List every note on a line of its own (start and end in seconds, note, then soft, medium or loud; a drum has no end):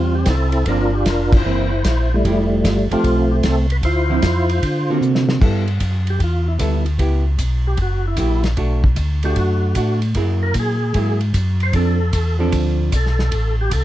0.00 0.25 E2 medium
0.00 0.24 G3 medium
0.00 0.24 C4 medium
0.00 0.29 C4 medium
0.00 0.15 F4 medium
0.15 0.28 G4 medium
0.26 0.65 C2 medium
0.26 kick soft
0.26 snare medium
0.26 hi-hat pedal medium
0.26 ride medium
0.30 0.65 C4 medium
0.30 0.65 E4 medium
0.30 0.69 A4 medium
0.52 ride soft
0.66 1.04 G1 medium
0.66 0.90 F3 soft
0.66 0.91 A#3 medium
0.66 0.91 C4 medium
0.66 1.43 D4 medium
0.66 1.43 F4 medium
0.66 0.95 A#4 medium
0.66 kick soft
0.66 ride medium
0.94 1.06 G4 medium
1.05 1.44 F1 medium
1.05 1.34 A#4 medium
1.05 kick soft
1.05 snare medium
1.05 hi-hat pedal medium
1.05 ride medium
1.32 2.09 E4 medium
1.32 2.16 C5 medium
1.32 kick medium
1.32 crash medium
1.44 1.83 F#1 medium
1.44 1.69 E3 medium
1.44 1.70 A#3 medium
1.44 1.70 C4 medium
1.84 2.23 A#1 medium
1.84 kick soft
1.84 snare medium
1.84 hi-hat pedal medium
1.84 ride medium
2.14 2.88 G3 medium
2.14 2.88 A3 medium
2.14 2.50 E4 medium
2.25 2.63 F1 medium
2.25 2.85 F3 soft
2.25 2.86 A3 soft
2.25 2.86 E4 medium
2.25 2.86 G4 medium
2.25 kick soft
2.25 ride medium
2.64 2.88 G1 medium
2.64 2.78 F4 medium
2.64 kick soft
2.64 snare medium
2.64 hi-hat pedal soft
2.64 ride medium
2.90 2.96 G1 soft
2.90 3.41 F3 medium
2.90 3.41 A3 medium
2.90 3.67 A3 medium
2.90 3.67 C4 medium
2.90 3.32 F4 loud
2.90 3.41 G4 medium
2.90 ride soft
3.04 3.42 B1 medium
3.04 kick soft
3.04 ride medium
3.31 3.37 G4 medium
3.43 3.82 C2 medium
3.43 3.56 A4 medium
3.43 kick soft
3.43 snare medium
3.43 hi-hat pedal soft
3.43 ride medium
3.70 3.77 B4 medium
3.70 ride soft
3.83 4.21 D2 medium
3.83 4.59 E4 medium
3.83 4.99 F4 medium
3.83 4.98 C5 medium
3.83 kick soft
3.83 ride medium
4.09 4.21 D3 medium
4.09 4.21 F3 medium
4.09 4.21 C4 medium
4.09 4.22 E4 medium
4.22 4.61 F2 medium
4.22 kick soft
4.22 snare medium
4.22 hi-hat pedal medium
4.22 ride medium
4.49 ride soft
4.63 5.01 D3 medium
4.63 kick soft
4.63 ride medium
4.90 5.39 D3 medium
4.90 5.39 A#3 medium
4.90 5.40 C4 medium
4.90 5.40 F#4 medium
5.01 5.40 C3 medium
5.01 hi-hat pedal medium
5.15 snare medium
5.29 snare medium
5.41 5.79 G2 medium
5.41 5.65 G3 soft
5.41 5.65 B3 medium
5.41 5.65 E4 medium
5.41 5.65 A4 medium
5.41 kick medium
5.41 crash medium
5.68 ride soft
5.80 6.19 F#2 medium
5.80 kick soft
5.80 hi-hat pedal medium
5.80 ride medium
6.07 6.21 G4 medium
6.07 ride soft
6.20 6.58 E2 medium
6.20 6.48 F4 medium
6.20 kick soft
6.20 ride soft
6.48 6.84 E4 medium
6.59 6.98 D2 medium
6.59 6.83 G3 medium
6.59 6.84 B3 medium
6.59 6.84 E4 medium
6.59 6.84 A4 medium
6.59 kick soft
6.59 hi-hat pedal medium
6.59 ride medium
6.86 ride soft
6.99 7.38 C#2 medium
6.99 7.23 B3 medium
6.99 7.23 E4 soft
6.99 7.24 G4 medium
6.99 kick soft
6.99 ride medium
7.38 7.77 B1 medium
7.38 kick soft
7.38 hi-hat pedal medium
7.38 ride medium
7.67 7.79 G4 medium
7.77 8.16 F#1 medium
7.77 kick soft
7.77 ride medium
7.82 8.06 F#4 medium
8.08 8.43 E4 medium
8.17 8.56 A#1 medium
8.17 8.42 F#3 soft
8.17 8.42 A#3 soft
8.17 8.42 E4 soft
8.17 8.42 G4 soft
8.17 kick soft
8.17 hi-hat pedal medium
8.17 ride medium
8.44 snare soft
8.44 ride soft
8.57 8.96 B1 medium
8.57 8.81 A3 medium
8.57 8.82 D4 medium
8.57 8.82 F#4 medium
8.57 kick soft
8.57 ride medium
8.84 kick medium
8.96 9.35 D2 medium
8.96 kick soft
8.96 hi-hat pedal soft
8.96 ride medium
9.23 9.74 A3 medium
9.23 9.74 D4 medium
9.23 9.75 F#4 medium
9.23 9.37 G4 medium
9.23 ride soft
9.36 9.75 F#2 medium
9.36 10.00 F#4 medium
9.36 kick soft
9.36 ride medium
9.75 10.15 A2 medium
9.75 10.00 A3 soft
9.75 10.01 D4 soft
9.75 10.01 F#4 medium
9.75 kick soft
9.75 hi-hat pedal medium
9.75 ride medium
10.02 ride soft
10.15 10.54 F#2 medium
10.15 10.77 F#3 soft
10.15 10.77 A#3 medium
10.15 10.77 E4 medium
10.15 10.77 G#4 medium
10.15 kick soft
10.15 ride medium
10.43 10.55 A#4 medium
10.54 10.93 A#2 medium
10.54 kick soft
10.54 hi-hat pedal medium
10.54 ride medium
10.59 11.19 G#4 medium
10.94 11.33 G#2 medium
10.94 11.19 F#3 soft
10.94 11.19 A#3 medium
10.94 11.19 E4 medium
10.94 11.19 G#4 medium
10.94 kick soft
10.94 ride medium
11.21 ride soft
11.34 11.73 F#2 medium
11.34 kick soft
11.34 hi-hat pedal medium
11.34 ride medium
11.60 11.75 C5 medium
11.60 ride soft
11.73 12.12 F2 medium
11.73 11.98 F3 soft
11.73 11.98 C4 soft
11.73 11.98 D4 soft
11.73 11.98 A4 soft
11.73 12.37 A4 medium
11.73 kick soft
11.73 ride medium
12.13 12.52 E2 medium
12.13 kick soft
12.13 hi-hat pedal soft
12.13 ride medium
12.39 12.89 F3 medium
12.39 12.90 C4 medium
12.39 12.90 D4 medium
12.39 12.90 A4 medium
12.52 12.91 D2 medium
12.52 kick soft
12.52 ride medium
12.92 13.31 B1 medium
12.92 13.56 A4 medium
12.92 kick soft
12.92 hi-hat pedal medium
12.92 ride medium
13.06 snare soft
13.19 snare soft
13.32 13.70 A1 medium
13.32 kick soft
13.32 ride medium
13.61 13.72 G4 medium
13.71 13.84 C2 medium
13.71 13.84 A4 medium
13.71 kick soft
13.71 hi-hat pedal soft
13.71 ride medium